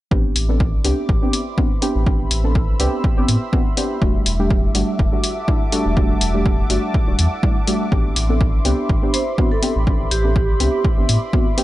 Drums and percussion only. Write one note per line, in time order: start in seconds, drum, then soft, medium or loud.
0.11 kick loud
0.36 open hi-hat loud
0.60 kick loud
0.85 open hi-hat medium
1.09 kick loud
1.33 open hi-hat loud
1.58 kick loud
1.82 open hi-hat medium
2.06 kick loud
2.31 open hi-hat loud
2.55 kick loud
2.80 open hi-hat medium
3.04 kick loud
3.28 open hi-hat loud
3.53 kick loud
3.77 open hi-hat medium
4.02 kick loud
4.26 open hi-hat loud
4.50 kick loud
4.75 open hi-hat medium
4.99 kick loud
5.24 open hi-hat loud
5.48 kick loud
5.72 open hi-hat loud
5.97 kick loud
6.21 open hi-hat loud
6.46 kick loud
6.70 open hi-hat medium
6.94 kick loud
7.19 open hi-hat loud
7.43 kick loud
7.67 open hi-hat medium
7.92 kick loud
8.16 open hi-hat loud
8.41 kick loud
8.65 open hi-hat medium
8.89 kick loud
9.14 open hi-hat loud
9.38 kick loud
9.63 open hi-hat medium
9.87 kick loud
10.11 open hi-hat loud
10.36 kick loud
10.60 open hi-hat medium
10.85 kick loud
11.09 open hi-hat loud
11.33 kick loud
11.58 open hi-hat medium